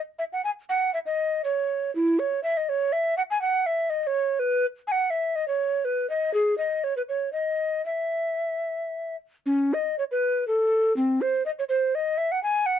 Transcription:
0.19 0.24 E5 medium
0.33 0.44 F#5 medium
0.44 0.50 G#5 medium
0.69 0.93 F#5 medium
0.94 0.99 E5 medium
1.06 1.42 D#5 medium
1.44 1.93 C#5 medium
1.95 2.21 E4 medium
2.19 2.43 C#5 medium
2.43 2.59 E5 medium
2.57 2.70 D#5 medium
2.69 2.94 C#5 medium
2.92 3.17 E5 medium
3.17 3.23 F#5 medium
3.30 3.41 G#5 medium
3.41 3.68 F#5 medium
3.66 3.91 E5 medium
3.90 4.03 D#5 medium
4.03 4.41 C#5 medium
4.03 4.08 D#5 medium
4.39 4.66 B4 medium
4.87 4.93 G#5 medium
4.92 5.12 F#5 medium
5.10 5.37 E5 medium
5.36 5.47 D#5 medium
5.48 5.86 C#5 medium
5.85 6.09 B4 medium
6.10 6.33 D#5 medium
6.34 6.57 G#4 medium
6.58 6.85 D#5 medium
6.84 6.96 C#5 medium
6.97 7.02 B4 medium
7.09 7.32 C#5 medium
7.33 7.84 D#5 medium
7.86 9.16 E5 medium
9.46 9.75 C#4 medium
9.73 9.98 D#5 medium
9.98 10.04 C#5 medium
10.11 10.47 B4 medium
10.47 10.95 A4 medium
10.96 11.23 C4 medium
11.21 11.45 C5 medium
11.46 11.51 D#5 medium
11.59 11.64 C#5 medium
11.69 11.96 C5 medium
11.95 12.19 D#5 medium
12.17 12.33 E5 medium
12.32 12.42 F#5 medium
12.43 12.68 G#5 medium
12.66 12.79 F#5 medium

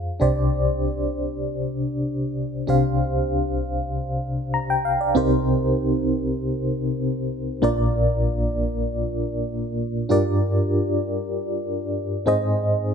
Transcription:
0.20 2.64 C2 medium
0.20 2.64 C3 medium
0.20 2.64 D4 medium
0.20 2.64 G4 medium
0.20 2.65 C5 medium
0.20 2.65 D5 medium
2.67 5.12 C2 medium
2.67 5.12 C3 medium
2.67 4.80 D4 medium
2.67 4.81 G4 medium
2.67 4.81 C5 medium
2.67 4.21 F5 medium
4.54 4.69 A#5 medium
4.70 4.84 G5 medium
4.85 5.00 F5 medium
5.01 5.30 D5 medium
5.15 7.59 C2 medium
5.15 7.59 C3 medium
5.15 7.59 C4 medium
5.15 7.59 D#4 medium
5.15 7.59 G4 medium
5.15 7.60 A#4 medium
5.15 7.60 C5 medium
7.62 10.07 A#1 medium
7.62 10.07 A#2 medium
7.62 10.06 A#3 medium
7.62 10.06 D4 medium
7.62 10.07 F4 medium
7.62 10.07 A#4 medium
7.62 10.07 D5 medium
10.09 12.23 G2 medium
10.09 12.22 D4 medium
10.09 12.23 F4 medium
10.09 12.23 G4 medium
10.09 12.23 A#4 medium
10.09 12.23 D5 medium
12.26 12.94 G#2 medium
12.26 12.94 C4 medium
12.26 12.94 D#4 medium
12.26 12.94 G#4 medium
12.26 12.94 C5 medium
12.26 12.94 D#5 medium

